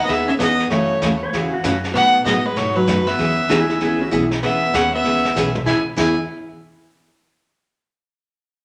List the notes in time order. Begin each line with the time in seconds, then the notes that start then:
0.05 D#2 E3 B3 D#5 E5, brush sweep, snare
0.09 D#4 G#4
0.28 C#4 E5
0.39 E2 E3 B3 D#4 G#4 D#5, snare, hi-hat pedal
0.59 snare
0.70 F#2 C#3 E3 A3 C#4 F#4 C#5, brush sweep, snare
1.01 D#2 C#3 E3 A3 C#4 F#4, snare, hi-hat pedal
1.23 C#5
1.33 E2 C#3 E3 A3 C#4 F#4 G#4, brush sweep, snare
1.54 F#4
1.64 F#2 C#3 E3 A3 C#4 F#4, snare, hi-hat pedal
1.84 snare
1.94 B2 F#3 A3 B3 D#4 F#4 F#5, brush sweep, snare
2.25 A2 B2 F#3 A3 B3 D#4 F#4 D#5, snare, hi-hat pedal
2.46 G#3 B4
2.56 G#2 B2 F#3 A3 D#4 F#4 C#5, brush sweep, snare
2.76 F#3 B4
2.87 F#2 B2 F#3 A3 D#4 F#4, snare, hi-hat pedal
3.07 B3 E5, snare
3.18 E2 E3 B3 C#4 G#4, brush sweep, snare
3.49 D#2 E3 B3 C#4 E4 G#4, snare, hi-hat pedal
3.69 E4 G#4, snare
3.80 C#2 E3 B3 C#4 E4 G#4, brush sweep, snare
4.01 C#4 F#4
4.11 B1 E3 B3 C#4 E4 G#4, hi-hat pedal
4.31 snare
4.43 E2 E3 B3 C#4 G#4 E5, brush sweep, snare
4.73 D#2 E3 B3 C#4 G#4 F#5, snare, hi-hat pedal
4.94 B3 E5
5.04 C#2 E3 B3 C#4 G#4, snare
5.25 snare
5.36 B1 E3 B3 C#4 G#4, snare, hi-hat pedal
5.55 mid tom
5.66 E2 E3 B3 C#4 E4 G#4 G#5, kick, snare
5.96 E2 E3 B3 C#4 E4 G#4 G#5, kick, snare, crash